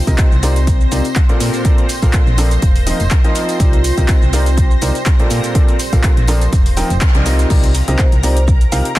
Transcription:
Already playing: ambient pad C4 F4, analog synth pad C5 A#6
0.07 fm bass C2, upright piano C3 C4 D#4 F4 A#4 D#5, kick, closed hi-hat, tambourine, shaker
0.18 kick, clap, closed hi-hat, tambourine, shaker
0.26 ambient pad G4
0.32 fm bass C2, shaker
0.43 upright piano C3 C4 D#4 F4 A#4 D5, ambient pad D5, open hi-hat, tambourine, shaker
0.56 closed hi-hat, tambourine, shaker
0.67 kick, closed hi-hat, tambourine, shaker
0.81 shaker
0.92 fm bass C2, upright piano C3 C4 D#4 F4 A#4 D5, open hi-hat, tambourine, shaker
1.04 closed hi-hat, tambourine, shaker
1.16 kick, clap, closed hi-hat, shaker
1.29 upright piano A#2 C4 F4 A4 A#4 D5, closed hi-hat, shaker
1.40 fm bass A#2, ambient pad A#4, open hi-hat, tambourine, shaker
1.53 closed hi-hat, tambourine, shaker
1.65 upright piano A#2 C4 F4 A4 A#4 D5, kick, closed hi-hat, tambourine, shaker
1.72 ambient pad F5
1.78 closed hi-hat, shaker
1.89 open hi-hat, tambourine, shaker
2.02 fm bass A#1, upright piano A#2 C4 F4 A4 A#4 F5, kick, closed hi-hat, tambourine, shaker
2.13 kick, clap, closed hi-hat, shaker
2.27 fm bass A#1, shaker
2.38 upright piano F3 C4 F4 A4 A#4 D5, open hi-hat, tambourine, shaker
2.51 closed hi-hat, tambourine, shaker
2.62 fm bass F1, ambient pad F4, kick, closed hi-hat, tambourine, shaker
2.76 fm bass D#1, open hi-hat, shaker
2.87 upright piano F3 C4 D#4 F4 A#4 D#5, open hi-hat, tambourine, shaker
3.00 fm bass F1, closed hi-hat, tambourine, shaker
3.11 kick, clap, closed hi-hat, shaker
3.24 upright piano F3 C4 D#4 F4 A#4 D#5, closed hi-hat, shaker
3.35 open hi-hat, tambourine, shaker
3.49 closed hi-hat, tambourine, shaker
3.60 fm bass C2, upright piano C3 C4 D#4 F4 A#4 D5, ambient pad C4, kick, closed hi-hat, tambourine, shaker
3.73 closed hi-hat, shaker
3.84 open hi-hat, tambourine, shaker
3.97 fm bass C2, upright piano C3 C4 D#4 F4 A#4 D#5, kick, closed hi-hat, tambourine, shaker
4.08 kick, clap, closed hi-hat, tambourine, shaker
4.13 ambient pad G4
4.22 fm bass C2, shaker
4.33 upright piano C3 C4 D#4 F4 A#4 D5, open hi-hat, tambourine, shaker
4.37 ambient pad D5
4.46 closed hi-hat, tambourine, shaker
4.57 kick, closed hi-hat, tambourine, shaker
4.71 shaker
4.81 fm bass C2, upright piano C3 C4 D#4 F4 A#4 D5, open hi-hat, tambourine, shaker
4.95 closed hi-hat, tambourine, shaker
5.06 kick, clap, closed hi-hat, shaker
5.19 upright piano A#2 C4 F4 A4 A#4 D5, closed hi-hat, shaker
5.30 fm bass A#2, ambient pad A#4, open hi-hat, tambourine, shaker
5.43 closed hi-hat, tambourine, shaker
5.52 upright piano A#2 C4 F4 A4 A#4 D5, ambient pad C6, kick, closed hi-hat, tambourine, shaker
5.68 closed hi-hat, shaker
5.80 open hi-hat, tambourine, shaker
5.93 fm bass A#1, upright piano A#2 C4 F4 A4 A#4 F5, kick, closed hi-hat, tambourine, shaker
6.03 kick, clap, closed hi-hat, tambourine, shaker
6.17 fm bass A#1, closed hi-hat, shaker
6.28 upright piano F3 C4 F4 A4 A#4 D5, open hi-hat, tambourine, shaker
6.41 closed hi-hat, tambourine, shaker
6.52 fm bass F1, kick, closed hi-hat, tambourine, shaker
6.66 fm bass D#1, open hi-hat, shaker
6.76 upright piano F3 C4 D#4 F4 A#4 G5, open hi-hat, tambourine, shaker
6.90 fm bass F1, closed hi-hat, tambourine, shaker
7.01 kick, clap, closed hi-hat, tambourine, shaker
7.15 fm bass C2, upright piano F3 C4 D#4 F4 A#4 D5, closed hi-hat, shaker
7.26 upright piano C3 C4 D#4 F4 A#4 D#5, open hi-hat, tambourine, shaker
7.39 closed hi-hat, tambourine, shaker
7.50 fm bass C2, upright piano C3 C4 D#4 F4 A#4 D5, analog synth pad A#4 A#5, kick, crash, shaker
7.64 closed hi-hat, shaker
7.75 open hi-hat, shaker
7.88 fm bass C2, upright piano C3 C4 D#4 F4 A#4 D#5, vibraphone C5, closed hi-hat, shaker
7.99 kick, clap, shaker
8.12 fm bass C2, closed hi-hat, shaker
8.23 upright piano C3 C4 D#4 F4 A#4 D5, vibraphone C5, open hi-hat, shaker
8.37 closed hi-hat, shaker
8.48 kick, shaker
8.61 closed hi-hat, shaker
8.72 fm bass C2, upright piano C3 C4 D#4 F4 A#4 F5, open hi-hat, shaker
8.85 closed hi-hat, shaker

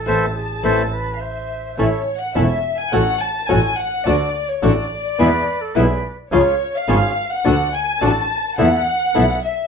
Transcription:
Already playing: flute A4
0.06 double bass A1, nylon-string guitar E3 A3 C4, bandoneon C4 E4 A4 C5 E5, violin section A5
0.34 flute G#4
0.63 double bass A1, nylon-string guitar E3 A3 C4, bandoneon C4 E4 A4 C5 E5, flute A4
0.93 flute B4
1.14 violin section F5
1.21 flute C5, violin section E5
1.78 double bass A1, nylon-string guitar E3 A3 C#4 E4, bandoneon C#4 E4 A4, violin section C#5
2.20 violin section F#5
2.34 double bass E1, nylon-string guitar E3 A3 C#4 E4, bandoneon C#4 E4 A4, violin section E5
2.78 violin section G#5
2.92 double bass A1, nylon-string guitar A3 C#4 F#4, bandoneon C#4 F#4 A4, violin section F#5
3.21 violin section A5
3.49 double bass A1, nylon-string guitar A3 C#4 F#4, bandoneon C#4 F#4 A4, violin section G#5
3.77 violin section F#5
4.05 double bass D2, nylon-string guitar D3 A3 D4 F#4, bandoneon D4 F#4 A4, violin section D5
4.49 violin section C#5
4.62 double bass A1, nylon-string guitar D3 A3 D4 F#4, bandoneon D4 F#4 A4, violin section D5
5.18 double bass E2, nylon-string guitar B2 E3 G#3 B3 E4, bandoneon B3 E4 G#4, flute B4
5.61 flute A4
5.75 double bass B1, nylon-string guitar B2 E3 G#3 B3 E4, bandoneon B3 E4 G#4, flute B4
6.32 double bass C#2, nylon-string guitar C#3 F3 G#3 C#4 F4, bandoneon C#4 F4 G#4, violin section C#5
6.75 violin section F5
6.88 double bass G#1, nylon-string guitar C#3 F3 G#3 C#4 F4, bandoneon C#4 F4 G#4
7.32 violin section F#5
7.44 double bass D2, nylon-string guitar D3 A3 D4 F#4, bandoneon D4 F#4 A4
7.74 violin section G#5
8.01 double bass A1, nylon-string guitar D3 A3 D4 F#4, bandoneon D4 F#4 A4, violin section A5
8.58 double bass E2, nylon-string guitar E3 A3 B3 E4, bandoneon B3 E4 A4, violin section F#5
9.14 double bass B1, nylon-string guitar E3 A3 B3 E4, bandoneon B3 E4 A4
9.44 violin section E5

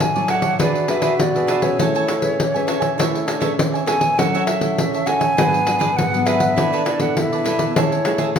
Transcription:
Already playing: trombone D4, cavaquinho F#4 A4 C#5 D5
0.00 nylon-string guitar A2, flute G#5, pandeiro
0.15 nylon-string guitar F#3 C#4 E4, cavaquinho A4 C#5 D5, pandeiro
0.28 cavaquinho F#4 A4 C#5 D5, flute F#5, pandeiro
0.42 cavaquinho A4 C#5 D5, pandeiro
0.59 nylon-string guitar E3 D4 G#4 B4, cavaquinho D4 G#4 B4 E5, trombone F#4, flute D5, pandeiro
0.76 pandeiro
0.88 cavaquinho D4 G#4 B4 E5, nylon-string guitar D4 G#4 B4, flute E5, pandeiro
1.02 cavaquinho D4 G#4 B4 E5, pandeiro
1.19 nylon-string guitar B2, flute D5, pandeiro
1.35 nylon-string guitar D4 G#4 B4, cavaquinho G#4 B4 E5, pandeiro
1.47 cavaquinho D4 G#4 B4 E5, pandeiro
1.61 nylon-string guitar C#4 G#4 B4, cavaquinho G#4 B4 E5, flute C#5, pandeiro
1.79 nylon-string guitar A3, trombone E4, cavaquinho A4 C#5 E5 G#5, pandeiro
1.95 cavaquinho A4 C#5 E5 G#5, pandeiro
2.07 cavaquinho A4 C#5 E5 G#5, pandeiro
2.22 nylon-string guitar C#4 G#4 B4, pandeiro
2.40 nylon-string guitar E3, trombone C#4, pandeiro
2.54 nylon-string guitar C#4 G#4 B4, cavaquinho C#5 E5 G#5, pandeiro
2.67 trombone C#4, cavaquinho A4 C#5 E5 G#5, pandeiro
2.80 cavaquinho C#5 E5 G#5, pandeiro
2.98 nylon-string guitar A3 C#4 G#4 B4, trombone E4, cavaquinho A4 C#5 E5 G#5, pandeiro
3.15 pandeiro
3.27 trombone D4, cavaquinho A4 C#5 E5 G#5, pandeiro
3.40 nylon-string guitar C#4 G#4 B4, cavaquinho A4 C#5 E5 G#5, pandeiro
3.59 nylon-string guitar E3, trombone C#4, pandeiro
3.74 cavaquinho C#5 E5 G#5, pandeiro
3.86 trombone B3, nylon-string guitar C#4 G#4 B4, cavaquinho A4 C#5 E5 G#5, flute G#5, pandeiro
4.00 cavaquinho C#5 E5 G#5, pandeiro
4.18 nylon-string guitar F#3 C#4 E4 A4, trombone C#4, cavaquinho F#4 A4 C#5 E5, flute F#5, pandeiro
4.34 cavaquinho F#4 A4 C#5 E5, pandeiro
4.47 cavaquinho F#4 A4 C#5 E5, flute E5, pandeiro
4.61 nylon-string guitar C#4 E4 A4, pandeiro
4.78 nylon-string guitar C#3, pandeiro
4.93 cavaquinho A4 C#5 E5, pandeiro
5.06 nylon-string guitar C#4 E4 A4, cavaquinho F#4 A4 C#5 E5, flute G#5, pandeiro
5.20 cavaquinho A4 C#5 E5, pandeiro
5.37 nylon-string guitar G#2 F#3 B3 D4, trombone B3, cavaquinho D4 G#4 B4 F#5, pandeiro
5.54 pandeiro
5.66 nylon-string guitar F#3 B3 D4, cavaquinho D4 G#4 B4 F#5, pandeiro
5.79 cavaquinho D4 G#4 B4 F#5, pandeiro
5.97 nylon-string guitar G#2, flute F#5, pandeiro
6.13 nylon-string guitar F#3 B3 D4, cavaquinho G#4 B4 F#5, pandeiro
6.26 cavaquinho D4 G#4 B4 F#5, flute E5, pandeiro
6.39 cavaquinho G#4 B4 F#5, pandeiro
6.56 nylon-string guitar E3 B3 D4 A4, trombone D4, cavaquinho E4 A4 B4 D5, pandeiro
6.72 cavaquinho E4 A4 B4 D5, pandeiro
6.85 cavaquinho E4 A4 B4 D5, flute D5, pandeiro
6.99 nylon-string guitar B3 D4 A4, flute F#5, pandeiro
7.17 nylon-string guitar B2, trombone E4, flute E5, pandeiro
7.32 cavaquinho A4 B4 D5, pandeiro
7.45 nylon-string guitar B3 D4 A4, cavaquinho E4 A4 B4 D5, pandeiro
7.58 cavaquinho A4 B4 D5, pandeiro
7.76 nylon-string guitar E3 A3 C#4 G#4, trombone E4, cavaquinho G#4 C#5 E5 A5, flute C#5, pandeiro
7.92 pandeiro
8.05 nylon-string guitar A3 C#4 G#4, cavaquinho G#4 C#5 E5 A5, pandeiro
8.18 cavaquinho G#4 C#5 E5 A5, pandeiro
8.36 pandeiro

